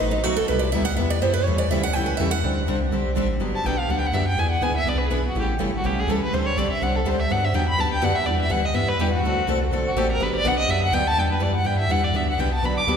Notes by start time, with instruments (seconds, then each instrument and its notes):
0.00 sub bass A1, steel-string acoustic guitar B2 F#3 A3 D#4 F#4 B4
0.11 steel-string acoustic guitar D#4
0.24 sub bass B1, steel-string acoustic guitar B2 F#3 A3 D#4 F#4 B4
0.36 sub bass B1, steel-string acoustic guitar A4
0.48 sub bass C2, steel-string acoustic guitar C3 G3 B3 E4 G4 B4
0.59 steel-string acoustic guitar D5
0.72 sub bass D2, steel-string acoustic guitar C3 G3 B3 E4 G4 E5
0.85 steel-string acoustic guitar F#5
0.96 sub bass E2, steel-string acoustic guitar C3 G3 B3 E4 G4 E5
1.10 steel-string acoustic guitar D5
1.22 sub bass F#2, steel-string acoustic guitar C3 G3 B3 E4 G4 C5
1.33 steel-string acoustic guitar B4
1.43 sub bass E2, steel-string acoustic guitar C#3 C#5
1.48 steel-string acoustic guitar E3 G3 A3 C#4 E4 G4 A4
1.58 steel-string acoustic guitar D5
1.71 sub bass D2, steel-string acoustic guitar C#3 E3 G3 A3 C#4 E4 G4 A4 E5
1.83 steel-string acoustic guitar F#5
1.93 sub bass C#2, steel-string acoustic guitar C#3 E3 G3 A3 G4 G5
1.98 steel-string acoustic guitar C#4 E4 A4
2.06 steel-string acoustic guitar B4
2.17 sub bass E2, steel-string acoustic guitar C#3 E3 G3 A3 C#4 E4 G4 A4 E5
2.31 steel-string acoustic guitar F#5
2.43 sub bass D2, steel-string acoustic guitar D3 G3 C4 D4 G4
2.67 sub bass C2, steel-string acoustic guitar D3 G3 C4 D4 G4
2.91 sub bass B1, steel-string acoustic guitar D3 G3 C4 D4 G4
3.15 sub bass A1, steel-string acoustic guitar D3 G3 C4 D4 G4
3.40 sub bass G1, steel-string acoustic guitar D3 F#3 B3 D4 G4
3.55 violin A5
3.63 sub bass B1, steel-string acoustic guitar D3 F#3 B3 D4 G4, violin G5
3.79 violin F5
3.87 sub bass D2, steel-string acoustic guitar D3 F#3 B3 D4 G4
3.91 violin F#5
3.99 violin G5
4.06 violin F#5
4.12 sub bass F#2, steel-string acoustic guitar D3 F#3 B3 D4 G4, violin E5
4.28 violin G5
4.37 sub bass E2, steel-string acoustic guitar E3 B3 D4 G#4 B4, violin G#5
4.51 violin F#5
4.61 sub bass D2, steel-string acoustic guitar E3 B3 D4 G#4 B4, violin G#5
4.77 violin E5
4.85 sub bass C2, steel-string acoustic guitar E3 B3 D4 G#4 B4, violin D5
4.98 violin B4
5.06 steel-string acoustic guitar E3 B3, violin G#4
5.10 sub bass B1, steel-string acoustic guitar D4 G#4 B4, violin E4
5.28 violin F#4
5.35 sub bass A1, steel-string acoustic guitar C#3 E3 G3 A3 C#4 E4 G4 A4
5.40 violin G4
5.58 sub bass G1, steel-string acoustic guitar C#3 E3 G3 A3 C#4 E4 G4 A4
5.77 violin F#4
5.83 sub bass B1, steel-string acoustic guitar C#3 E3 G3 A3 C#4 E4 G4 A4, violin G4
6.00 violin G#4
6.07 sub bass C#2, steel-string acoustic guitar C#3 E3 G3 A3 C#4 E4 G4 A4
6.11 violin A4
6.21 sub bass C#2, violin B4
6.32 sub bass D2, steel-string acoustic guitar D3 G3 C4 D4 G4, violin C5
6.47 violin C#5
6.56 sub bass B1, steel-string acoustic guitar D3 G3 C4 D4 G4, violin D5
6.70 sub bass B1, violin E5
6.81 sub bass C2, steel-string acoustic guitar D3 G3 C4 D4 G4, violin F#5
6.96 violin A4
7.05 sub bass D2, steel-string acoustic guitar D3 G3 C4 D4 G4, violin C5
7.20 violin E5
7.29 sub bass G2, steel-string acoustic guitar D3 F#3 B3 D4 G4, violin F#5
7.45 violin E5
7.53 sub bass E2, steel-string acoustic guitar D3 F#3 B3 D4 G4, violin G5
7.69 violin B5
7.77 sub bass D2, steel-string acoustic guitar D3 F#3 B3 D4 G4, violin A5
7.94 violin G5
8.02 sub bass F#2, steel-string acoustic guitar D3 F#3 B3 D4 G4, violin F#5
8.16 sub bass F#2, violin E5
8.26 sub bass E2, steel-string acoustic guitar E3 G3 B3 D4 E4 G4 B4, violin D5
8.42 violin E5
8.50 sub bass D2, steel-string acoustic guitar E3 G3 B3 D4 E4 G4 B4, violin F#5
8.65 violin D#5
8.74 sub bass G2, steel-string acoustic guitar E3 G3 B3 D4 E4 G4 B4, violin E5
8.88 sub bass G2, violin B4
8.99 sub bass E2, steel-string acoustic guitar E3 G3 B3 D4 E4 G4 B4, violin G4
9.13 violin F#4
9.23 sub bass D2, steel-string acoustic guitar D3 A3 C4 F#4 A4
9.37 sub bass D2
9.47 sub bass C2, steel-string acoustic guitar D3 A3 C4 F#4 A4
9.71 sub bass B1, steel-string acoustic guitar D3 A3 C4 F#4 A4
9.87 violin F#4
9.96 sub bass A1, steel-string acoustic guitar D3 A3 C4 F#4 A4, violin G4
10.12 violin A#4
10.20 sub bass G1, steel-string acoustic guitar D3 F#3 B3 D4 G4, violin B4
10.36 violin D5
10.44 sub bass B1, steel-string acoustic guitar D3 F#3 B3 D4 G4
10.48 violin F#5
10.59 violin D#5
10.68 sub bass F#2, steel-string acoustic guitar D3 F#3 B3 D4 G4, violin E5
10.84 violin F#5
10.92 sub bass D2, steel-string acoustic guitar D3 F#3 B3 D4 G4, violin G5
11.08 violin A5
11.16 sub bass E2, steel-string acoustic guitar E3 G3 B3 D4 E4 G4 B4, violin G5
11.32 violin B4
11.39 sub bass F#2, steel-string acoustic guitar E3 G3 B3 D4 E4 G4 B4, violin D5
11.55 violin F#5
11.64 sub bass G2, steel-string acoustic guitar E3 G3 B3 D4 E4 G4 B4, violin G5
11.79 violin E5
11.88 sub bass E2, steel-string acoustic guitar E3 G3 B3 D4 E4 G4 B4, violin F#5
12.04 violin D5
12.13 sub bass D2, steel-string acoustic guitar D3 F#3 B3 D4 G4, violin E5
12.30 violin F#5
12.38 sub bass C2, steel-string acoustic guitar D3 F#3 B3 D4 G4, violin G5
12.54 violin A5
12.62 sub bass B1, steel-string acoustic guitar D3 F#3 B3 D4 G4, violin B5
12.78 violin D6
12.87 sub bass D2, steel-string acoustic guitar D3 F#3 B3 D4 G4